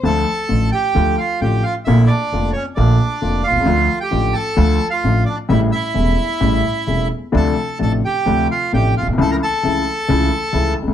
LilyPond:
<<
  \new Staff \with { instrumentName = "Bandoneon" } { \time 4/4 \key d \minor \tempo 4 = 132 <a' a''>4. <g' g''>4 <f' f''>8 <g' g''>8 <f' f''>8 | <e' e''>8 <d' d''>4 <cis' cis''>8 <d' d''>4. <f' f''>8~ | <f' f''>8. <g' g''>8. <a' a''>4~ <a' a''>16 <f' f''>8. <d' d''>8 | <e' e''>8 <e' e''>2. r8 |
<a' a''>4 <a' a''>8 <g' g''>4 <f' f''>8 <g' g''>8 <f' f''>8 | <a' a''>16 <bes' bes''>16 <a' a''>2. r8 | }
  \new Staff \with { instrumentName = "Grand piano" } { \clef bass \time 4/4 \key d \minor <d, d f a f'>8 r8 <a,, a, d f a f'>8 r8 <d, d f a f'>8 r8 <a,, a, d f a f'>8 r8 | <bes,, bes, d a bes f'>8 r8 <f,, f, d a bes f'>8 r8 <bes,, bes, d a bes f'>8 r8 <f,, f, d a bes f'>8 r32 b,,32 c,32 cis,32 | <d, d f a f'>8 r8 <a,, a, d f a f'>8 r8 <d, d f a f'>8 r8 <a,, a, d f a f'>8 r8 | <a,, a, cis g a e'>8 r8 <e,, e, cis g a e'>8 r8 <a,, a, cis g a e'>8 r8 <e,, e, cis g a e'>8 r8 |
<d, c d f a d'>8 r8 <a,, a, c f a d'>8 r8 <d, c d f a d'>8 r8 <a,, a, c f a d'>8 r32 bes,,32 b,,32 c,32 | <cis, cis e a e'>8 r8 <cis, cis e a e'>8 r8 <cis, cis e a e'>8 r8 <cis, cis e a e'>8 r32 cis,32 d,32 r32 | }
  \new Staff \with { instrumentName = "Upright bass" } { \clef bass \time 4/4 \key d \minor d,16. r8 r32 a,,16. r8 r32 d,16. r8 r32 a,,16. r8 r32 | bes,,16. r8 r32 f,,16. r8 r32 bes,,16. r8 r32 f,,16. r16 b,,32 c,32 cis,32 | d,16. r8 r32 a,,16. r8 r32 d,16. r8 r32 a,,16. r8 r32 | a,,16. r8 r32 e,,16. r8 r32 a,,16. r8 r32 e,,16. r8 r32 |
d,16. r8 r32 a,,16. r8 r32 d,16. r8 r32 a,,16. r16 bes,,32 b,,32 c,32 | cis,16. r8 r32 cis,16. r8 r32 cis,16. r8 r32 cis,16. r16 cis,32 d,32 r32 | }
>>